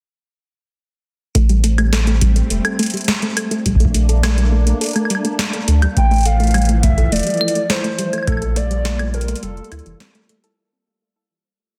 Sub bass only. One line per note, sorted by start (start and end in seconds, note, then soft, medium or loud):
1.35 2.42 A1 loud
2.50 2.60 E1 medium
3.66 4.73 A#1 loud
5.68 5.86 D2 medium
5.97 7.03 A1 loud
7.12 7.21 E1 medium
8.27 9.34 A#1 loud
9.43 9.61 F1 medium
9.72 9.81 D2 medium
9.86 9.95 F1 loud